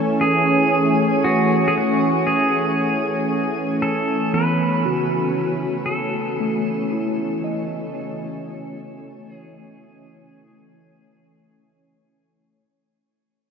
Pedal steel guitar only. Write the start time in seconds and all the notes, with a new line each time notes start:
Already playing: A4
0.21 G#4
1.24 F#4
1.68 G#4
1.78 F#4
2.27 G#4
3.82 A4
4.34 B4
5.86 A4
9.33 G#4